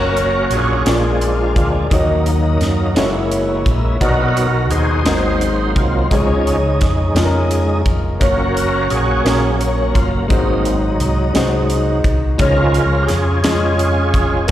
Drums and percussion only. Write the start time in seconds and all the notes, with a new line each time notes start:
0.17 closed hi-hat
0.51 closed hi-hat
0.86 snare, closed hi-hat
1.21 closed hi-hat
1.56 kick, closed hi-hat
1.91 kick, closed hi-hat
2.26 closed hi-hat
2.61 snare, closed hi-hat
2.96 snare, closed hi-hat
3.32 closed hi-hat
3.66 kick, closed hi-hat
4.01 kick, closed hi-hat
4.37 closed hi-hat
4.71 closed hi-hat
5.06 snare, closed hi-hat
5.41 closed hi-hat
5.76 kick, closed hi-hat
6.11 kick, closed hi-hat
6.47 closed hi-hat
6.81 kick, snare, closed hi-hat
7.16 snare, closed hi-hat
7.51 closed hi-hat
7.86 kick, closed hi-hat
8.21 kick, closed hi-hat
8.57 closed hi-hat
8.90 closed hi-hat
9.26 snare, closed hi-hat
9.61 closed hi-hat
9.95 kick, closed hi-hat
10.30 kick, closed hi-hat
10.65 closed hi-hat
11.00 closed hi-hat
11.35 snare, closed hi-hat
11.70 closed hi-hat
12.04 kick, closed hi-hat
12.39 kick, closed hi-hat
12.74 closed hi-hat
13.09 snare, closed hi-hat
13.44 snare, closed hi-hat
13.79 closed hi-hat
14.14 kick, closed hi-hat
14.48 closed hi-hat